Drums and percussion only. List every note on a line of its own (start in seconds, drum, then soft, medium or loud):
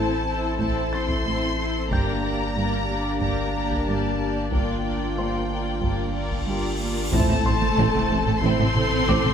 0.61 taiko medium
1.10 taiko medium
1.91 taiko medium
3.21 taiko medium
3.71 taiko medium
4.52 taiko medium
5.83 taiko medium
6.32 taiko medium
7.13 taiko loud
7.62 taiko mid medium
7.94 taiko mid medium
8.60 taiko mid medium
8.76 taiko mid medium
9.09 taiko medium
9.25 taiko mid medium